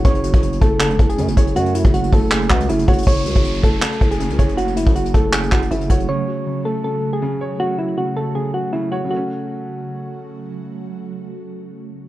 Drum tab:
HH |x-x-x-x-x-x-x---x-x-x-x-x-x-x-x-|x-x-x-x-x-x-o---x-x-x-x-x-x-xxxx|x-x-x-x-x-x-x---x-x-x-x-x-x-x-x-|x-x-x-x-x-x-x---x-x-x-x-x-x-x-x-|
CP |----------------x---------------|----------------x---x-----------|----------------x---------------|----------------x---x-----------|
BD |o-----o-----o-------o-------o---|------o-----o-------o-------o---|o-----o-----o-------o-------o---|------o-----o-------o-------o---|

HH |--------------------------------|--------------------------------|--------------------------------|--------------------------------|
CP |--------------------------------|--------------------------------|--------------------------------|--------------------------------|
BD |--------------------------------|--------------------------------|--------------------------------|--------------------------------|